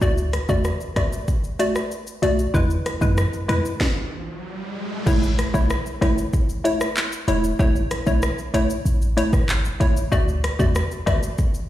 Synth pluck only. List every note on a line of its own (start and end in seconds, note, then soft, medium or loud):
0.01 0.23 A3 loud
0.01 0.23 F#4 medium
0.01 0.23 D5 loud
0.49 0.70 A3 medium
0.49 0.70 F#4 medium
0.49 0.70 D5 medium
0.96 1.17 A3 medium
0.96 1.17 F#4 medium
0.96 1.18 D5 medium
1.59 1.81 A3 medium
1.59 1.81 F#4 medium
1.59 1.81 D5 medium
2.22 2.51 A3 medium
2.22 2.52 F#4 medium
2.22 2.52 D5 medium
2.54 2.75 G#3 loud
2.54 2.75 E4 medium
2.54 2.75 B4 loud
3.01 3.23 G#3 medium
3.01 3.23 E4 medium
3.01 3.23 B4 medium
3.48 3.70 G#3 medium
3.48 3.70 E4 medium
3.48 3.70 B4 medium
5.06 5.28 A3 loud
5.06 5.28 E4 medium
5.06 5.28 C#5 loud
5.54 5.75 A3 medium
5.54 5.75 E4 medium
5.54 5.75 C#5 medium
6.01 6.23 A3 medium
6.01 6.23 E4 medium
6.01 6.23 C#5 medium
6.64 6.86 A3 medium
6.64 6.86 E4 medium
6.64 6.86 C#5 medium
7.28 7.57 A3 medium
7.28 7.57 E4 medium
7.28 7.57 C#5 medium
7.59 7.81 A3 loud
7.59 7.81 E4 medium
7.59 7.81 C#5 loud
8.06 8.28 A3 medium
8.06 8.28 E4 medium
8.06 8.28 C#5 medium
8.54 8.75 A3 medium
8.54 8.75 E4 medium
8.54 8.75 C#5 medium
9.17 9.38 A3 medium
9.17 9.38 E4 medium
9.17 9.39 C#5 medium
9.80 10.09 A3 medium
9.80 10.09 E4 medium
9.80 10.10 C#5 medium
10.12 10.33 A3 loud
10.12 10.33 F#4 medium
10.12 10.33 D5 loud
10.59 10.80 A3 medium
10.59 10.81 F#4 medium
10.59 10.81 D5 medium
11.06 11.28 A3 medium
11.06 11.28 F#4 medium
11.06 11.28 D5 medium